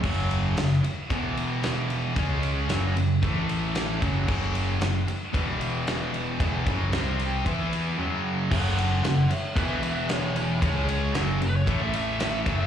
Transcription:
<<
  \new Staff \with { instrumentName = "Lead electric guitar" } { \time 4/4 \key fis \minor \tempo 4 = 114 r1 | r1 | r1 | r1 |
<a' fis''>8 <a' fis''>8 <a' fis''>8 <cis'' e''>8 <b' e''>8 <b' e''>8 <e' cis''>8 <e' cis''>8 | <e' cis''>8 cis''8 r8 b'16 cis''8 e''16 e''4. | }
  \new Staff \with { instrumentName = "Distorted electric guitar" } { \clef bass \time 4/4 \key fis \minor <fis, cis fis>4 <fis, cis>8 r8 <e, b, e>2 | <cis gis cis'>4 <fis, cis fis>8 <fis, cis>8 <a, e a>4. <fis, cis fis>8 | <fis, cis fis>4 <fis, cis>8 r8 <e, b, e>2 | <e, b, e>8 <fis, cis fis>8 <c g c'>4 <e b e'>4 <fis, cis fis>4 |
<fis, cis fis>4 <fis, cis>8 r8 <e, b, e>2 | <cis gis cis'>4 <fis, cis fis>8 <fis, cis>8 <a, e a>4. <fis, cis fis>8 | }
  \new Staff \with { instrumentName = "Distorted electric guitar" } { \clef bass \time 4/4 \key fis \minor <fis, cis fis>4 <fis, cis>8 r8 <e, b, e>2 | <cis gis cis'>4 <fis, cis fis>8 <fis, cis>8 <a, e a>4. <fis, cis fis>8 | <fis, cis fis>4 <fis, cis>8 r8 <e, b, e>2 | <e, b, e>8 <fis, cis fis>8 <c g c'>4 <e b e'>4 <fis, cis fis>4 |
<fis, cis fis>4 <fis, cis>8 r8 <e, b, e>2 | <cis gis cis'>4 <fis, cis fis>8 <fis, cis>8 <a, e a>4. <fis, cis fis>8 | }
  \new Staff \with { instrumentName = "Picked electric bass" } { \clef bass \time 4/4 \key fis \minor fis,,4 fis,,8 r8 e,,2 | cis,4 fis,,8 fis,,8 a,,4. fis,,8 | fis,,4 fis,,8 r8 e,,2 | e,,8 fis,,8 c,4 e,4 r4 |
fis,,4 fis,,8 r8 e,,2 | cis,4 fis,,8 fis,,8 a,,4. fis,,8 | }
  \new DrumStaff \with { instrumentName = "Drums" } \drummode { \time 4/4 <cymc bd>8 cymr8 <cymr sn>8 cymr8 <bd cymr>8 cymr8 <cymr sn>8 cymr8 | <bd cymr>8 cymr8 <cymr sn>8 cymr8 <bd cymr>8 cymr8 <cymr sn>8 <bd cymr>8 | <cymc bd>8 cymr8 <cymr sn>8 cymr8 <bd cymr>8 cymr8 <cymr sn>8 cymr8 | <bd cymr>8 <bd cymr>8 <cymr sn>8 cymr8 <bd cymr>8 cymr8 r4 |
<cymc bd>8 cymr8 <cymr sn>8 cymr8 <bd cymr>8 cymr8 <cymr sn>8 cymr8 | <bd cymr>8 cymr8 <cymr sn>8 cymr8 <bd cymr>8 cymr8 <cymr sn>8 <bd cymr>8 | }
>>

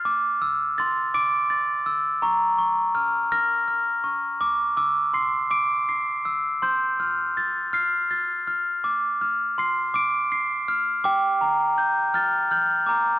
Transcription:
\new Staff \with { instrumentName = "Glockenspiel" } { \time 6/8 \key d \minor \tempo 4. = 55 << { r8 e'''8 a'''8 d''''8 a'''8 e'''8 | bes''8 des'''8 f'''8 bes'''8 f'''8 des'''8 | d'''8 e'''8 c''''8 d''''8 c''''8 e'''8 | c'''8 f'''8 a'''8 c''''8 a'''8 f'''8 |
d'''8 f'''8 c''''8 d''''8 c''''8 f'''8 | g''8 bes''8 g'''8 a'''8 g'''8 bes''8 | } \\ { d'''4 c'''8 d'''4 r8 | des'''4. f'''8 r4 | r8 d'''8 c'''8 d'''4 r8 | g'''4. f'''4 r8 |
r4 c'''8 d'''4 r8 | d'''4. f'''8 f'''8 d'''8 | } >> }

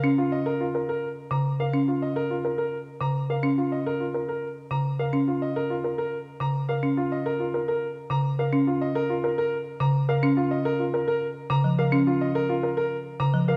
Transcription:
<<
  \new Staff \with { instrumentName = "Grand piano" } { \time 3/4 \key bes \phrygian \tempo 4 = 106 r8 ees''16 bes'16 r8 bes'16 r8 bes''16 r16 f''16 | r8 ees''16 bes'16 r8 bes'16 r8 bes''16 r16 f''16 | r8 ees''16 bes'16 r8 bes'16 r8 bes''16 r16 f''16 | r8 ees''16 bes'16 r8 bes'16 r8 bes''16 r16 f''16 |
r8 ees''16 bes'16 r8 bes'16 r8 bes''16 r16 f''16 | r8 ees''16 bes'16 r8 bes'16 r8 bes''16 r16 f''16 | r8 ees''16 bes'16 r8 bes'16 r8 bes''16 r16 f''16 | r8 ees''16 bes'16 r8 bes'16 r8 bes''16 r16 f''16 | }
  \new Staff \with { instrumentName = "Grand piano" } { \time 3/4 \key bes \phrygian r16 f'16 r8 f'16 bes'16 r4 r16 bes'16 | r16 f'16 r8 f'16 bes'16 r4 r16 bes'16 | r16 f'16 r8 f'16 bes'16 r4 r16 bes'16 | r16 f'16 r8 f'16 bes'16 r4 r16 bes'16 |
r16 f'16 r8 f'16 bes'16 r4 r16 bes'16 | r16 f'16 r8 f'16 bes'16 r4 r16 bes'16 | r16 f'16 r8 f'16 bes'16 r4 r16 bes'16 | r16 f'16 r8 f'16 bes'16 r4 r16 bes'16 | }
  \new Staff \with { instrumentName = "Marimba" } { \clef bass \time 3/4 \key bes \phrygian des'16 r2 des16 r8 | des'16 r2 des16 r8 | des'16 r2 des16 r8 | des'16 r2 des16 r8 |
des'16 r2 des16 r8 | des'16 r2 des16 r8 | des'16 r2 des16 f16 r16 | des'16 r2 des16 f16 r16 | }
>>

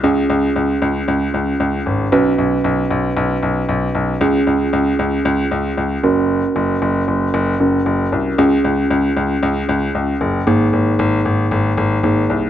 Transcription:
<<
  \new Staff \with { instrumentName = "Synth keys" } { \time 4/4 \key des \major \tempo 4 = 115 <des' f' aes'>1 | <des' ges' ces''>1 | <des' f' aes'>2.~ <des' f' aes'>8 <des' ges' bes'>8~ | <des' ges' bes'>2~ <des' ges' bes'>8 <des' ges' bes'>4. |
<des' f' aes'>1 | <bes ees' aes'>2. <bes ees' aes'>4 | }
  \new Staff \with { instrumentName = "Grand piano" } { \clef bass \time 4/4 \key des \major des,8 des,8 des,8 des,8 des,8 des,8 des,8 aes,,8 | ces,8 ces,8 ces,8 ces,8 ces,8 ces,8 ces,8 ces,8 | des,8 des,8 des,8 des,8 des,8 des,8 des,8 ges,,8~ | ges,,8 ges,,8 ges,,8 ges,,8 ges,,8 ges,,8 ges,,8 c,8 |
des,8 des,8 des,8 des,8 des,8 des,8 des,8 ges,,8 | aes,,8 aes,,8 aes,,8 aes,,8 aes,,8 aes,,8 aes,,8 c,8 | }
>>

